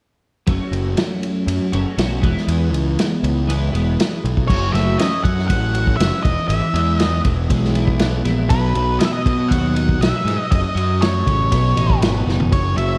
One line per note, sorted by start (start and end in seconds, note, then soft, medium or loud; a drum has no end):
0.47 0.58 F#1 medium
0.47 1.71 F#3 medium
0.47 1.71 A3 medium
0.47 1.72 C#4 medium
0.47 1.71 F#4 medium
0.47 kick medium
0.47 ride medium
0.71 0.94 F#1 medium
0.71 ride medium
0.97 snare loud
0.97 ride medium
1.23 ride medium
1.47 1.59 F#2 medium
1.47 ride medium
1.72 1.84 F#1 medium
1.72 1.95 F#3 medium
1.72 1.96 A3 medium
1.72 1.96 C#4 medium
1.72 1.96 F#4 medium
1.72 ride medium
1.97 2.21 B1 medium
1.97 2.20 F#3 medium
1.97 2.21 A3 medium
1.97 2.22 C#4 medium
1.97 2.22 F#4 medium
1.97 snare loud
1.97 ride medium
2.20 2.34 E1 medium
2.20 3.46 E3 medium
2.20 3.46 G#3 medium
2.20 3.47 B3 medium
2.20 3.47 E4 medium
2.20 kick medium
2.20 ride medium
2.37 snare soft
2.48 2.73 E2 medium
2.48 ride medium
2.73 2.96 C#2 medium
2.73 ride medium
2.99 snare medium
2.99 ride medium
3.23 3.69 C#2 medium
3.23 ride medium
3.47 3.71 E3 medium
3.47 3.72 G#3 medium
3.47 3.72 B3 medium
3.47 3.71 E4 medium
3.47 ride medium
3.72 3.96 E1 medium
3.72 4.23 E3 medium
3.72 4.22 G#3 medium
3.72 4.22 B3 medium
3.72 4.21 E4 medium
3.72 ride medium
4.00 snare loud
4.00 ride medium
4.24 4.47 B1 medium
4.24 ride soft
4.37 kick medium
4.48 4.72 F#1 medium
4.48 5.23 F#3 medium
4.48 4.74 C#5 medium
4.48 kick loud
4.48 crash medium
4.72 4.96 F#1 medium
4.72 5.48 A3 medium
4.72 4.99 E5 medium
4.72 snare soft
4.72 ride medium
4.99 5.99 C#4 medium
4.99 5.23 D#5 medium
4.99 snare medium
4.99 ride medium
5.24 5.51 F#2 loud
5.24 6.24 F#3 medium
5.24 5.47 F#5 medium
5.24 kick medium
5.24 ride medium
5.38 snare soft
5.48 5.95 A1 medium
5.48 6.24 A3 medium
5.48 5.96 F#5 medium
5.48 kick medium
5.48 ride medium
5.75 6.24 F#4 medium
5.75 ride medium
5.87 kick medium
5.97 6.10 F#1 medium
5.97 6.25 C#4 medium
5.97 6.21 E5 medium
5.97 ride medium
6.01 snare loud
6.23 6.36 E1 medium
6.23 6.49 E3 medium
6.23 6.48 D#5 medium
6.23 kick loud
6.23 snare soft
6.23 ride medium
6.48 6.60 G#1 medium
6.48 7.24 E3 medium
6.48 6.98 E5 medium
6.48 ride medium
6.74 7.20 E2 medium
6.74 7.49 G#3 medium
6.74 ride medium
6.98 7.98 B3 medium
6.98 7.20 D#5 medium
6.98 snare loud
6.98 ride medium
7.25 7.48 E1 medium
7.25 8.49 E3 medium
7.25 kick medium
7.25 ride medium
7.50 8.21 B1 loud
7.50 8.50 G#3 medium
7.50 kick medium
7.50 ride medium
7.64 snare soft
7.75 8.24 E4 medium
7.75 ride medium
7.88 kick medium
7.99 8.50 B3 medium
7.99 snare loud
7.99 ride medium
8.25 8.48 A#1 medium
8.25 8.50 E4 medium
8.25 snare soft
8.25 ride medium
8.50 8.73 B1 loud
8.50 9.24 B2 medium
8.50 9.01 B4 medium
8.50 kick loud
8.50 ride medium
8.75 8.98 B1 medium
8.75 9.50 F#3 medium
8.75 ride medium
8.99 9.99 B3 medium
8.99 9.05 D#5 medium
8.99 snare medium
8.99 ride medium
9.05 9.13 E5 medium
9.13 9.51 D#5 medium
9.25 10.50 B2 medium
9.25 9.52 B2 loud
9.25 kick medium
9.25 ride medium
9.48 9.97 D#2 medium
9.48 10.74 F#3 medium
9.48 10.01 F#5 medium
9.48 kick medium
9.48 ride medium
9.75 10.24 D#4 medium
9.75 ride medium
9.89 kick medium
10.00 10.11 B1 medium
10.00 10.50 B3 medium
10.00 10.39 E5 medium
10.00 snare loud
10.00 ride medium
10.25 10.36 G#2 medium
10.25 10.50 D#4 medium
10.25 snare soft
10.25 ride medium
10.39 10.51 D#5 medium
10.50 10.63 F#1 medium
10.50 11.51 F#2 medium
10.50 11.02 D#5 medium
10.50 kick loud
10.50 ride medium
10.75 11.22 F#2 medium
10.75 11.50 F#3 medium
10.75 ride medium
11.01 11.51 A3 medium
11.01 11.98 C#5 medium
11.01 snare loud
11.01 ride medium
11.26 11.49 A1 medium
11.26 11.50 C#3 medium
11.26 kick medium
11.26 ride medium
11.51 11.74 B1 medium
11.51 12.51 B2 medium
11.51 kick medium
11.51 ride medium
11.76 11.98 A1 medium
11.76 12.25 D#4 medium
11.76 ride medium
11.90 kick medium
12.01 12.24 G#1 medium
12.01 12.52 B3 medium
12.01 snare loud
12.01 ride medium
12.26 12.49 F#1 medium
12.26 12.51 D#4 medium
12.26 snare medium
12.40 floor tom medium
12.51 12.75 F#1 medium
12.51 12.98 F#2 medium
12.51 12.77 C#5 medium
12.51 kick loud
12.51 ride medium
12.76 12.98 F#1 medium
12.76 12.98 F#3 medium
12.76 12.98 E5 medium
12.76 ride medium